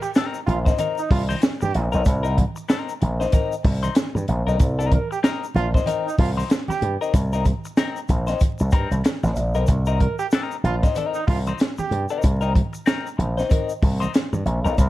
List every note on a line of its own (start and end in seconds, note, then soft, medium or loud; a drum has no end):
0.02 0.10 G4 medium
0.02 muted clean electric guitar stroke medium
0.02 shaker medium
0.14 0.38 C4 medium
0.14 0.39 D#4 medium
0.14 0.39 A#4 medium
0.14 snare loud
0.14 closed hi-hat medium
0.14 muted conga soft
0.14 shaker medium
0.34 shaker medium
0.46 0.71 A#1 medium
0.46 0.58 F4 medium
0.46 muted clean electric guitar stroke soft
0.46 closed hi-hat medium
0.46 muted conga soft
0.46 high conga medium
0.46 low conga medium
0.65 0.77 C4 medium
0.65 0.78 D#4 soft
0.65 0.77 C5 medium
0.65 kick medium
0.65 snare soft
0.65 shaker medium
0.78 1.00 C4 medium
0.78 1.00 D#4 medium
0.78 1.01 A#4 medium
0.78 closed hi-hat medium
0.78 high conga medium
0.78 shaker medium
0.98 1.09 D#4 loud
0.98 shaker medium
1.10 1.34 C2 medium
1.10 1.23 F4 medium
1.10 muted clean electric guitar stroke soft
1.10 kick loud
1.10 open hi-hat medium
1.10 high conga soft
1.29 1.41 C4 soft
1.29 1.41 D#4 medium
1.29 1.41 C5 medium
1.29 high conga medium
1.29 shaker medium
1.42 snare loud
1.42 closed hi-hat loud
1.42 muted conga soft
1.42 shaker medium
1.61 1.71 G2 medium
1.61 1.87 G4 loud
1.61 muted clean electric guitar stroke soft
1.61 high conga medium
1.61 shaker medium
1.75 1.89 A#1 medium
1.75 closed hi-hat medium
1.75 muted conga soft
1.75 low conga medium
1.92 2.03 B1 medium
1.92 2.04 C4 medium
1.92 2.05 D#4 medium
1.92 2.05 A#4 medium
1.92 shaker soft
2.05 2.43 C2 loud
2.05 muted clean electric guitar stroke soft
2.05 kick loud
2.05 closed hi-hat medium
2.05 muted conga soft
2.05 shaker medium
2.23 2.36 C4 medium
2.23 2.37 D#4 medium
2.23 2.38 A#4 medium
2.23 shaker medium
2.38 kick medium
2.38 closed hi-hat medium
2.38 muted conga soft
2.38 high conga loud
2.56 muted clean electric guitar stroke soft
2.56 shaker medium
2.68 2.92 C4 medium
2.68 2.92 D#4 medium
2.68 2.93 A#4 medium
2.68 snare loud
2.68 closed hi-hat medium
2.68 muted conga soft
2.68 shaker medium
2.89 shaker medium
3.01 3.25 A#1 medium
3.01 muted clean electric guitar stroke medium
3.01 closed hi-hat medium
3.01 high conga medium
3.01 low conga medium
3.20 3.31 C4 soft
3.20 3.32 D#4 medium
3.20 3.32 C5 medium
3.20 snare soft
3.20 shaker medium
3.32 3.54 C4 medium
3.32 3.54 D#4 medium
3.32 3.55 A#4 medium
3.32 kick loud
3.32 closed hi-hat medium
3.32 muted conga soft
3.32 high conga medium
3.32 shaker medium
3.52 shaker medium
3.63 3.88 C2 medium
3.63 muted clean electric guitar stroke soft
3.63 kick loud
3.63 open hi-hat medium
3.63 high conga soft
3.83 3.95 C4 soft
3.83 3.95 D#4 medium
3.83 3.95 C5 medium
3.83 closed hi-hat soft
3.83 high conga medium
3.83 shaker medium
3.95 snare loud
3.95 closed hi-hat medium
3.95 shaker medium
4.15 4.24 G2 medium
4.15 muted clean electric guitar stroke soft
4.15 high conga medium
4.15 shaker medium
4.28 4.42 A#1 medium
4.28 closed hi-hat medium
4.28 muted conga soft
4.28 low conga medium
4.47 4.56 B1 medium
4.47 4.58 C4 medium
4.47 4.59 D#4 medium
4.47 4.59 A#4 medium
4.47 shaker medium
4.59 4.97 C2 loud
4.59 muted clean electric guitar stroke medium
4.59 kick loud
4.59 closed hi-hat medium
4.59 muted conga soft
4.59 shaker medium
4.79 4.91 C4 medium
4.79 4.92 D#4 medium
4.79 4.92 A#4 medium
4.79 shaker medium
4.92 5.07 A#4 medium
4.92 muted clean electric guitar stroke soft
4.92 kick medium
4.92 closed hi-hat medium
4.92 muted conga soft
4.92 high conga medium
5.11 5.19 G4 medium
5.11 muted clean electric guitar stroke medium
5.11 shaker medium
5.23 5.44 C4 medium
5.23 5.45 D#4 medium
5.23 5.45 A#4 medium
5.23 snare loud
5.23 closed hi-hat medium
5.23 shaker medium
5.44 shaker medium
5.54 5.78 A#1 medium
5.54 5.67 F4 loud
5.54 muted clean electric guitar stroke medium
5.54 closed hi-hat medium
5.54 muted conga soft
5.54 high conga medium
5.54 low conga medium
5.74 5.85 C4 soft
5.74 5.86 D#4 medium
5.74 5.86 C5 medium
5.74 kick medium
5.74 snare soft
5.74 shaker medium
5.86 6.08 C4 medium
5.86 6.08 D#4 medium
5.86 6.09 A#4 medium
5.86 closed hi-hat medium
5.86 muted conga soft
5.86 high conga medium
5.86 shaker medium
6.06 6.17 D#4 loud
6.06 shaker medium
6.18 6.42 C2 loud
6.18 6.30 F4 medium
6.18 muted clean electric guitar stroke medium
6.18 kick loud
6.18 open hi-hat medium
6.18 muted conga soft
6.18 high conga soft
6.37 6.49 C4 medium
6.37 6.50 D#4 medium
6.37 6.49 C5 medium
6.37 high conga medium
6.37 shaker soft
6.50 muted clean electric guitar stroke medium
6.50 snare loud
6.50 closed hi-hat medium
6.50 shaker medium
6.68 6.94 G4 loud
6.68 muted slap bass stroke soft
6.68 muted clean electric guitar stroke medium
6.68 snare soft
6.68 high conga loud
6.68 shaker medium
6.81 6.96 G2 medium
6.81 closed hi-hat medium
6.81 low conga medium
7.01 7.13 C4 medium
7.01 7.14 D#4 medium
7.01 7.14 A#4 medium
7.01 shaker soft
7.14 7.51 C2 medium
7.14 kick loud
7.14 closed hi-hat medium
7.14 shaker medium
7.33 7.45 C4 medium
7.33 7.45 D#4 medium
7.33 7.46 A#4 medium
7.33 shaker medium
7.45 muted clean electric guitar stroke soft
7.45 kick medium
7.45 closed hi-hat medium
7.45 muted conga soft
7.45 high conga medium
7.45 shaker medium
7.65 muted clean electric guitar stroke soft
7.65 shaker medium
7.77 7.99 C4 medium
7.77 7.99 D#4 medium
7.77 8.00 A#4 medium
7.77 snare loud
7.77 closed hi-hat medium
7.77 muted conga soft
7.77 shaker medium
7.96 shaker medium
8.08 8.32 A#1 medium
8.08 muted clean electric guitar stroke soft
8.08 kick medium
8.08 closed hi-hat medium
8.08 high conga medium
8.08 low conga medium
8.08 shaker soft
8.27 8.41 C4 soft
8.27 8.40 D#4 medium
8.27 8.39 C5 medium
8.27 snare soft
8.27 closed hi-hat medium
8.27 shaker medium
8.40 kick medium
8.40 closed hi-hat medium
8.40 high conga medium
8.40 shaker medium
8.59 8.70 C2 medium
8.59 muted clean electric guitar stroke medium
8.59 shaker medium
8.71 8.87 G2 medium
8.71 8.94 C4 medium
8.71 8.91 D#4 loud
8.71 8.90 A#4 loud
8.71 kick loud
8.71 closed hi-hat medium
8.71 high conga soft
8.71 shaker medium
8.91 9.01 C2 medium
8.91 muted clean electric guitar stroke soft
8.91 closed hi-hat soft
8.91 high conga medium
8.91 shaker medium
9.04 muted clean electric guitar stroke soft
9.04 snare loud
9.04 closed hi-hat medium
9.04 shaker medium
9.23 9.33 A1 medium
9.23 muted clean electric guitar stroke soft
9.23 snare soft
9.23 high conga medium
9.23 shaker medium
9.36 9.55 A#1 medium
9.36 closed hi-hat medium
9.36 muted conga soft
9.36 low conga medium
9.36 shaker medium
9.55 9.65 B1 medium
9.55 9.66 C4 medium
9.55 9.67 D#4 medium
9.55 9.68 A#4 medium
9.55 shaker soft
9.67 10.06 C2 loud
9.67 kick loud
9.67 closed hi-hat medium
9.67 muted conga soft
9.67 shaker medium
9.86 9.99 C4 medium
9.86 10.00 D#4 medium
9.86 10.01 A#4 medium
9.86 shaker medium
9.99 10.15 A#4 medium
9.99 muted clean electric guitar stroke soft
9.99 kick medium
9.99 closed hi-hat medium
9.99 muted conga soft
9.99 high conga medium
10.19 10.27 G4 loud
10.19 muted clean electric guitar stroke soft
10.19 shaker medium
10.31 10.55 C4 medium
10.31 10.56 D#4 medium
10.31 10.56 A#4 medium
10.31 snare loud
10.31 closed hi-hat medium
10.31 shaker medium
10.51 shaker medium
10.63 10.87 A#1 medium
10.63 10.76 F4 loud
10.63 muted clean electric guitar stroke soft
10.63 closed hi-hat medium
10.63 muted conga soft
10.63 high conga medium
10.63 low conga medium
10.83 10.94 C4 soft
10.83 10.95 D#4 medium
10.83 10.95 C5 medium
10.83 kick medium
10.83 snare soft
10.83 closed hi-hat soft
10.83 shaker medium
10.95 11.18 C4 medium
10.95 11.19 D#4 medium
10.95 11.19 A#4 medium
10.95 closed hi-hat medium
10.95 high conga medium
10.95 shaker medium
11.14 11.25 D#4 loud
11.14 shaker medium
11.27 11.51 C2 medium
11.27 11.39 F4 loud
11.27 muted clean electric guitar stroke soft
11.27 kick loud
11.27 open hi-hat medium
11.27 muted conga soft
11.27 high conga soft
11.46 11.58 C4 medium
11.46 11.59 D#4 medium
11.46 11.59 C5 medium
11.46 closed hi-hat soft
11.46 high conga medium
11.46 shaker medium
11.59 snare loud
11.59 closed hi-hat loud
11.59 muted conga soft
11.59 shaker medium
11.78 12.04 G4 loud
11.78 muted slap bass stroke soft
11.78 muted clean electric guitar stroke soft
11.78 high conga medium
11.78 shaker medium
11.91 12.05 G2 medium
11.91 closed hi-hat medium
11.91 muted conga soft
11.91 low conga medium
12.09 12.22 C4 medium
12.09 12.23 D#4 medium
12.09 12.24 A#4 medium
12.09 shaker soft
12.22 12.60 C2 loud
12.22 muted clean electric guitar stroke soft
12.22 kick loud
12.22 closed hi-hat loud
12.22 shaker medium
12.41 12.52 C4 medium
12.41 12.53 D#4 medium
12.41 12.54 A#4 medium
12.41 shaker medium
12.53 muted clean electric guitar stroke soft
12.53 kick medium
12.53 closed hi-hat medium
12.53 muted conga soft
12.53 high conga loud
12.73 muted clean electric guitar stroke soft
12.73 shaker medium
12.86 13.08 C4 medium
12.86 13.08 D#4 medium
12.86 13.09 A#4 medium
12.86 snare loud
12.86 closed hi-hat medium
12.86 muted conga soft
12.86 shaker medium
13.07 shaker soft
13.17 13.42 A#1 medium
13.17 muted clean electric guitar stroke soft
13.17 closed hi-hat medium
13.17 high conga medium
13.17 low conga medium
13.37 13.48 C4 soft
13.37 13.49 D#4 medium
13.37 13.49 C5 medium
13.37 snare soft
13.37 shaker medium
13.49 13.71 C4 medium
13.49 13.72 D#4 medium
13.49 13.72 A#4 medium
13.49 kick loud
13.49 closed hi-hat medium
13.49 high conga medium
13.49 shaker medium
13.69 shaker medium
13.82 14.06 C2 medium
13.82 muted clean electric guitar stroke soft
13.82 kick loud
13.82 open hi-hat medium
13.82 muted conga soft
13.82 high conga medium
14.00 14.12 C4 medium
14.00 14.12 D#4 medium
14.00 14.12 C5 medium
14.00 closed hi-hat soft
14.00 high conga medium
14.00 shaker medium
14.13 muted clean electric guitar stroke soft
14.13 snare loud
14.13 closed hi-hat medium
14.13 shaker medium
14.33 14.42 G2 medium
14.33 muted clean electric guitar stroke medium
14.33 high conga medium
14.33 shaker medium
14.45 14.60 A#1 medium
14.45 closed hi-hat medium
14.45 muted conga soft
14.45 low conga medium
14.65 14.74 B1 medium
14.65 14.76 C4 medium
14.65 14.77 D#4 medium
14.65 14.77 A#4 medium
14.65 shaker medium
14.77 14.89 C2 loud
14.77 muted clean electric guitar stroke soft
14.77 kick medium
14.77 closed hi-hat medium
14.77 muted conga soft
14.77 shaker medium